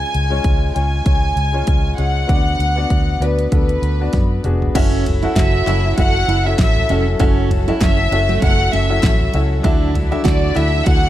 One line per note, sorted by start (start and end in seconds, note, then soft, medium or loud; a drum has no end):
0.00 0.40 C#3 soft
0.00 0.22 G#3 medium
0.00 0.22 C#4 medium
0.00 0.23 F4 medium
0.00 0.23 C#5 medium
0.00 0.74 G#5 medium
0.14 0.40 C#2 medium
0.14 closed hi-hat medium
0.30 0.71 G#3 medium
0.30 0.71 C#4 medium
0.30 0.71 F4 medium
0.30 0.72 C#5 medium
0.44 0.70 C#2 loud
0.44 kick loud
0.44 closed hi-hat medium
0.74 1.01 C#2 medium
0.74 1.03 G#3 medium
0.74 1.03 C#4 medium
0.74 1.03 F4 medium
0.74 1.04 C#5 medium
0.74 1.94 G#5 medium
0.74 closed hi-hat medium
1.04 1.31 C#2 medium
1.04 1.48 G#3 medium
1.04 1.48 C#4 medium
1.04 1.49 F4 medium
1.04 1.49 C#5 medium
1.04 kick loud
1.04 closed hi-hat medium
1.36 1.62 C#2 medium
1.36 closed hi-hat medium
1.52 1.94 G#3 medium
1.52 1.94 C#4 medium
1.52 1.94 F4 medium
1.52 1.94 C#5 medium
1.67 1.93 C#2 medium
1.67 kick loud
1.67 closed hi-hat medium
1.97 2.24 C#2 medium
1.97 2.26 G#3 medium
1.97 2.26 C#4 medium
1.97 2.26 F4 medium
1.97 2.27 G#4 medium
1.97 3.22 F#5 medium
1.97 closed hi-hat medium
2.27 2.54 D2 medium
2.27 3.17 D3 medium
2.27 2.71 B3 medium
2.27 2.71 D4 medium
2.27 2.72 F#4 medium
2.27 2.72 D5 medium
2.27 kick loud
2.27 closed hi-hat medium
2.59 2.85 D2 medium
2.59 closed hi-hat medium
2.76 3.17 B3 medium
2.76 3.17 D4 medium
2.76 3.17 F#4 medium
2.76 3.18 D5 medium
2.90 3.16 D2 medium
2.90 kick medium
2.90 closed hi-hat medium
3.20 3.46 D2 medium
3.20 3.49 B3 medium
3.20 3.49 D4 medium
3.20 3.49 F#4 medium
3.20 3.53 B4 medium
3.20 3.50 D5 medium
3.20 closed hi-hat medium
3.39 closed hi-hat soft
3.51 3.77 D2 medium
3.51 3.94 B3 medium
3.51 3.95 D4 soft
3.51 3.95 F#4 soft
3.51 3.95 A4 medium
3.51 4.41 B4 medium
3.51 kick medium
3.51 closed hi-hat medium
3.69 closed hi-hat soft
3.82 4.08 D2 medium
3.82 closed hi-hat medium
4.00 4.40 B3 medium
4.00 4.40 D4 medium
4.00 4.41 F#4 medium
4.00 4.41 D5 medium
4.13 4.39 F#2 medium
4.13 kick loud
4.13 snare soft
4.13 closed hi-hat medium
4.43 4.69 F1 medium
4.43 4.72 B3 medium
4.43 4.72 D4 medium
4.43 4.72 F#4 medium
4.43 4.73 G#4 medium
4.43 closed hi-hat medium
4.43 mid tom medium
4.62 floor tom medium
4.75 5.25 F#1 medium
4.75 11.09 F#3 medium
4.75 5.17 C#4 medium
4.75 5.04 C#4 loud
4.75 5.18 E4 medium
4.75 7.18 E4 medium
4.75 5.18 F#4 medium
4.75 9.61 A4 medium
4.75 5.18 A4 medium
4.75 5.18 E5 loud
4.75 kick loud
4.75 crash medium
4.75 ride medium
5.06 floor tom medium
5.06 ride medium
5.23 5.63 C#4 medium
5.23 5.35 E4 medium
5.23 5.63 E4 medium
5.23 5.63 F#4 medium
5.23 5.63 A4 medium
5.23 5.64 F#5 medium
5.36 5.61 F#1 loud
5.36 5.66 F#4 medium
5.36 5.94 E5 medium
5.36 kick loud
5.36 snare loud
5.36 clap medium
5.36 ride medium
5.66 5.92 F#1 loud
5.66 5.94 C#4 medium
5.66 5.94 E4 medium
5.66 5.84 E4 medium
5.66 5.95 F#4 medium
5.66 5.95 A4 medium
5.66 5.95 E5 medium
5.66 clap medium
5.66 ride medium
5.98 6.23 F#1 medium
5.98 6.40 C#4 medium
5.98 6.40 E4 medium
5.98 6.27 F#4 medium
5.98 6.41 F#4 medium
5.98 6.41 A4 medium
5.98 6.41 E5 medium
5.98 6.46 F#5 loud
5.98 kick loud
5.98 ride medium
6.28 6.53 F#1 medium
6.28 6.44 E4 medium
6.28 ride medium
6.45 6.85 C#4 medium
6.45 6.85 E4 medium
6.45 6.86 F#4 medium
6.45 6.86 A4 medium
6.45 6.86 E5 medium
6.45 6.58 E5 medium
6.58 6.84 A1 medium
6.58 7.04 E5 medium
6.58 kick loud
6.58 snare loud
6.58 clap medium
6.58 ride medium
6.76 floor tom medium
6.89 7.14 F1 medium
6.89 7.17 C#4 medium
6.89 7.06 C#4 medium
6.89 7.18 E4 medium
6.89 7.18 F#4 medium
6.89 7.18 A4 medium
6.89 7.18 E5 medium
6.89 ride medium
7.19 7.70 F#1 medium
7.19 7.62 C#4 loud
7.19 7.49 C#4 loud
7.19 7.62 E4 medium
7.19 7.62 F#4 medium
7.19 9.63 F#4 medium
7.19 7.63 A4 medium
7.19 7.63 E5 medium
7.19 kick loud
7.19 ride medium
7.51 floor tom medium
7.51 ride medium
7.67 8.08 C#4 medium
7.67 8.08 E4 medium
7.67 7.80 E4 medium
7.67 8.08 F#4 medium
7.67 8.08 A4 medium
7.67 8.08 E5 medium
7.81 8.06 F#1 loud
7.81 7.97 C#4 medium
7.81 8.39 E5 medium
7.81 kick loud
7.81 snare loud
7.81 clap medium
7.81 ride medium
8.11 8.37 F#1 loud
8.11 8.39 C#4 medium
8.11 8.39 E4 medium
8.11 8.40 F#4 medium
8.11 8.40 A4 medium
8.11 8.40 E5 medium
8.11 ride medium
8.29 8.58 A3 medium
8.42 8.67 F#1 medium
8.42 8.85 C#4 medium
8.42 8.85 E4 medium
8.42 8.85 F#4 medium
8.42 8.86 A4 medium
8.42 8.86 E5 medium
8.42 8.74 F#5 loud
8.42 kick loud
8.42 ride medium
8.73 8.98 F#1 medium
8.73 8.89 C#4 medium
8.73 9.35 E5 medium
8.73 ride medium
8.89 9.30 C#4 medium
8.89 9.30 E4 medium
8.89 9.30 F#4 medium
8.89 9.30 A4 medium
8.89 9.30 E5 medium
9.03 9.28 A1 loud
9.03 kick loud
9.03 snare loud
9.03 clap medium
9.03 ride medium
9.21 floor tom medium
9.33 9.59 C#2 medium
9.33 9.62 C#4 medium
9.33 9.62 E4 medium
9.33 9.62 F#4 medium
9.33 9.62 A4 medium
9.33 9.62 E5 medium
9.33 ride medium
9.63 10.15 D2 loud
9.63 10.52 D3 medium
9.63 10.06 D4 loud
9.63 11.09 D4 medium
9.63 9.94 D4 loud
9.63 10.07 E4 medium
9.63 11.09 E4 medium
9.63 10.07 F#4 medium
9.63 10.07 A4 medium
9.63 10.07 E5 loud
9.63 kick loud
9.63 ride medium
9.95 floor tom medium
9.95 ride medium
10.11 10.52 D4 medium
10.11 10.52 E4 medium
10.11 10.24 E4 medium
10.11 10.52 F#4 medium
10.11 10.52 A4 medium
10.11 10.52 E5 loud
10.24 10.51 D2 loud
10.24 10.54 F#4 medium
10.24 kick loud
10.24 snare loud
10.24 clap medium
10.24 ride medium
10.27 10.55 D5 medium
10.27 clap medium
10.54 10.81 D2 loud
10.54 10.83 D4 medium
10.54 10.83 E4 medium
10.54 10.72 E4 medium
10.54 10.84 F#4 medium
10.54 10.84 A4 medium
10.54 10.84 E5 medium
10.54 10.87 E5 loud
10.54 clap medium
10.54 ride medium
10.85 11.09 D2 loud
10.85 11.09 D4 medium
10.85 11.09 E4 medium
10.85 11.09 F#4 medium
10.85 11.09 A4 medium
10.85 11.09 E5 medium
10.85 11.09 F#5 loud
10.85 kick loud
10.85 ride medium